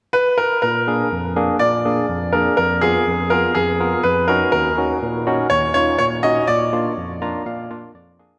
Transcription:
0.13 B4
0.38 A#4
0.62 A#2 A#4
0.88 A#3 D4 G#4
1.12 F2
1.37 A#3 D4 G#4
1.59 A#2 D5
1.85 A#3 D4 G#4
2.10 F2
2.33 A#3 D4 G#4 A#4
2.57 F2 A#4
2.81 B3 F4 G#4
3.07 F2
3.30 B3 F4 G#4 A#4
3.55 F2 G#4
3.80 B3 F4 A#4
4.03 F2 B4
4.28 C#4 D#4 F#4 A#4
4.52 D#2 A#4
4.78 C#4 D#4 F#4
5.02 A#2
5.27 C#4 D#4 F#4
5.50 D#2 C#5
5.74 C#4 D#4 F4 C#5
5.98 A#2 C#5
6.23 C#4 D#4 F#4 D#5
6.47 A#2 D5
6.73 A#3 D4 F4
6.97 F2
7.22 A#3 D4 F4 A#5
7.46 A#2 F5
7.71 A#3 D4 F4
7.95 F2 D5
8.19 A#3 D4 G#4

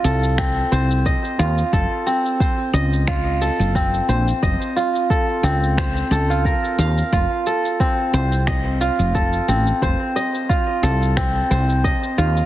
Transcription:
Already playing: C4 F4 C5 D#5
0.04 C2 A4, shaker
0.24 shaker
0.38 C4, finger snap, kick, shaker
0.72 C2 C5, shaker
0.91 shaker
1.06 D#5, kick, shaker
1.24 shaker
1.39 D#2 F4, shaker
1.58 shaker
1.73 F#1 A4, kick, shaker
2.06 C4, shaker
2.26 shaker
2.40 C5, kick, shaker
2.73 C#2 D#5, shaker
2.93 shaker
3.08 F4, finger snap, kick, shaker
3.42 A4, shaker
3.60 F#1, shaker
3.75 C4, kick, shaker
3.94 shaker
4.09 A#1 C5, shaker
4.28 shaker
4.43 F#1 D#5, kick, shaker
4.62 shaker
4.76 F4, shaker
4.96 shaker
5.10 A4, kick, shaker
5.43 C#2 C4, shaker
5.63 shaker
5.78 C5, finger snap, kick, shaker
5.97 shaker
6.11 C#2 A4, shaker
6.30 F4, shaker
6.45 A#4, kick, shaker
6.65 shaker
6.79 D#2 F5, shaker
6.98 shaker
7.13 F1 F4, kick, shaker
7.47 A4, shaker
7.65 shaker
7.80 C4, kick, shaker
8.14 C2 C5, shaker
8.32 shaker
8.47 D#5, finger snap, kick, shaker
8.81 F4, shaker
8.99 F1, shaker
9.15 A4, kick, shaker
9.33 shaker
9.48 A1 C4, shaker
9.67 shaker
9.82 F1 C5, kick, shaker
10.16 D#5, shaker
10.35 shaker
10.49 F4, kick, shaker
10.83 C2 A4, shaker
11.02 shaker
11.17 C4, finger snap, kick, shaker
11.51 C2 C5, shaker
11.69 shaker
11.84 D#5, kick, shaker
12.03 shaker
12.18 D#2 F4, shaker
12.37 shaker

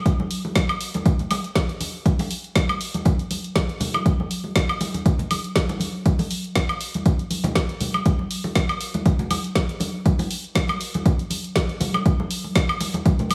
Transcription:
0.06 kick, closed hi-hat, muted conga
0.20 high conga
0.31 open hi-hat
0.45 muted conga
0.56 kick, snare, closed hi-hat, high conga
0.69 closed hi-hat, high woodblock
0.81 open hi-hat
0.94 closed hi-hat, muted conga, high conga
1.06 kick, closed hi-hat
1.19 closed hi-hat, low conga
1.31 open hi-hat, muted conga, high conga, high woodblock
1.44 closed hi-hat
1.55 kick, snare, closed hi-hat
1.69 closed hi-hat
1.80 open hi-hat, muted conga, high conga
2.06 kick, closed hi-hat
2.19 open hi-hat, muted conga, high conga
2.31 open hi-hat
2.44 closed hi-hat
2.56 kick, snare, closed hi-hat, high conga
2.69 closed hi-hat, muted conga, high woodblock
2.81 open hi-hat
2.94 closed hi-hat, high conga
3.05 kick, closed hi-hat, muted conga
3.19 closed hi-hat
3.30 open hi-hat, high conga
3.44 closed hi-hat
3.56 kick, snare, closed hi-hat, muted conga
3.69 closed hi-hat
3.80 open hi-hat, high conga, low conga
3.94 closed hi-hat, muted conga, high woodblock
4.06 kick, closed hi-hat
4.20 high conga
4.31 open hi-hat
4.44 muted conga
4.56 kick, snare, closed hi-hat, high conga
4.69 closed hi-hat, high woodblock
4.81 open hi-hat, muted conga
4.94 closed hi-hat, high conga
5.06 kick, closed hi-hat
5.19 closed hi-hat, low conga
5.31 open hi-hat, muted conga, high conga, high woodblock
5.44 closed hi-hat
5.56 kick, snare, closed hi-hat
5.69 closed hi-hat, muted conga
5.80 open hi-hat, high conga
6.06 kick, closed hi-hat
6.19 open hi-hat, muted conga, high conga
6.31 open hi-hat
6.44 closed hi-hat
6.55 kick, snare, closed hi-hat, muted conga, high conga
6.69 closed hi-hat, high woodblock
6.81 open hi-hat
6.94 closed hi-hat, high conga
7.06 kick, closed hi-hat, muted conga
7.19 closed hi-hat
7.30 open hi-hat, high conga
7.44 closed hi-hat, muted conga, low conga
7.55 kick, snare, closed hi-hat
7.69 closed hi-hat
7.80 open hi-hat, high conga, low conga
7.94 muted conga, high woodblock
8.06 kick, closed hi-hat, muted conga
8.19 high conga
8.31 open hi-hat
8.44 muted conga
8.55 kick, snare, closed hi-hat, high conga
8.69 closed hi-hat, high woodblock
8.81 open hi-hat
8.94 closed hi-hat, muted conga, high conga
9.06 kick, closed hi-hat
9.19 closed hi-hat, low conga
9.31 open hi-hat, muted conga, high conga, high woodblock
9.44 closed hi-hat
9.55 kick, snare, closed hi-hat
9.69 closed hi-hat
9.80 open hi-hat, muted conga, high conga
10.06 kick, closed hi-hat
10.19 open hi-hat, muted conga, high conga
10.31 open hi-hat
10.44 closed hi-hat
10.55 kick, snare, closed hi-hat, high conga
10.68 closed hi-hat, muted conga, high woodblock
10.81 open hi-hat
10.94 closed hi-hat, high conga
11.06 kick, closed hi-hat, muted conga
11.19 closed hi-hat
11.30 open hi-hat, high conga
11.44 closed hi-hat
11.56 kick, snare, closed hi-hat, muted conga
11.69 closed hi-hat
11.80 open hi-hat, high conga, low conga
11.94 closed hi-hat, muted conga, high woodblock
12.06 kick, closed hi-hat
12.20 high conga
12.31 open hi-hat
12.44 muted conga
12.55 kick, snare, closed hi-hat, high conga
12.69 closed hi-hat, high woodblock
12.80 open hi-hat, muted conga
12.94 closed hi-hat, high conga
13.06 kick, closed hi-hat
13.19 closed hi-hat, low conga
13.30 open hi-hat, muted conga, high conga, high woodblock

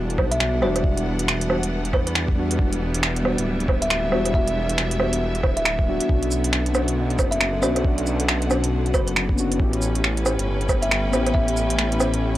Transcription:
Already playing: E1 E3 G3 B3 D4 F#4 F#5
0.10 closed hi-hat
0.18 B1, kick, low woodblock
0.31 E5, closed hi-hat
0.40 finger snap
0.60 E1 G3 B3 D4 F#4 D5, low woodblock
0.76 closed hi-hat, low woodblock
0.80 G3 B3
0.84 D4 F#4, kick
0.97 closed hi-hat
1.19 closed hi-hat
1.28 finger snap
1.41 closed hi-hat
1.47 G3 B3 D4, low woodblock
1.51 F#4
1.63 closed hi-hat
1.85 closed hi-hat
1.93 E2 B4, kick, low woodblock
2.07 B4, closed hi-hat
2.15 finger snap
2.28 kick
2.35 G3 B3 D4
2.39 F#4
2.51 closed hi-hat
2.55 E1 G3 B3, kick
2.60 D4 F#4
2.73 closed hi-hat
2.94 E4, closed hi-hat
3.03 finger snap
3.16 closed hi-hat
3.23 G3 B3 D4 F#4, low woodblock
3.29 E5
3.38 D1, closed hi-hat
3.60 closed hi-hat
3.68 kick, low woodblock
3.82 E5, closed hi-hat
3.90 finger snap
4.10 E1 G3 B3 D4, low woodblock
4.14 F#4
4.25 closed hi-hat, low woodblock
4.31 E1 G3 B3, kick
4.35 D4 F#4 E5
4.48 closed hi-hat
4.69 closed hi-hat
4.78 finger snap
4.91 closed hi-hat
4.98 G3 B3 D4, low woodblock
5.02 F#4
5.13 closed hi-hat
5.35 closed hi-hat
5.43 D1, kick, low woodblock
5.57 E5, closed hi-hat
5.65 E5, finger snap
5.79 kick
5.85 G3 B3 D4 F#4
6.00 closed hi-hat
6.05 B3 C#4
6.09 B1 B2 D4 F#4, kick
6.19 D3, closed hi-hat
6.31 cabasa
6.40 F#5, closed hi-hat
6.53 finger snap
6.66 closed hi-hat
6.73 B3 C#4 D4, cabasa, low woodblock
6.77 F#4
6.88 closed hi-hat
7.10 closed hi-hat
7.19 F#1, kick, cabasa, low woodblock
7.31 E5, closed hi-hat
7.41 finger snap
7.60 B1 B3 C#4 D4 F#4 D5, cabasa, low woodblock
7.76 closed hi-hat, low woodblock
7.81 B3, kick
7.86 D4 F#4
7.98 closed hi-hat
8.07 cabasa
8.20 closed hi-hat
8.28 finger snap
8.42 closed hi-hat
8.48 B3 C#4 D4 F#4, cabasa, low woodblock
8.64 closed hi-hat
8.86 closed hi-hat
8.94 F#1 B4, kick, cabasa, low woodblock
9.07 B4, closed hi-hat
9.16 finger snap
9.29 kick
9.36 B3 C#4 D4, cabasa
9.40 F#4
9.52 B3, closed hi-hat
9.58 A1 A2 C#4 E4, kick
9.63 G4
9.71 C#4 B4, closed hi-hat
9.77 A3
9.82 cabasa
9.95 closed hi-hat
10.04 finger snap
10.17 closed hi-hat
10.24 B3 C#4 E4 G4, cabasa, low woodblock
10.34 G5
10.39 G1, closed hi-hat
10.61 closed hi-hat
10.69 kick, cabasa, low woodblock
10.82 E5, closed hi-hat
10.91 finger snap
11.11 A1 B3 C#4 E4, cabasa, low woodblock
11.15 G4
11.26 closed hi-hat, low woodblock
11.31 A1 B3 C#4 E5, kick
11.36 E4 G4
11.48 closed hi-hat
11.57 cabasa
11.70 closed hi-hat
11.79 finger snap
11.92 closed hi-hat
11.99 B3 C#4 E4, cabasa, low woodblock
12.03 G4
12.14 closed hi-hat

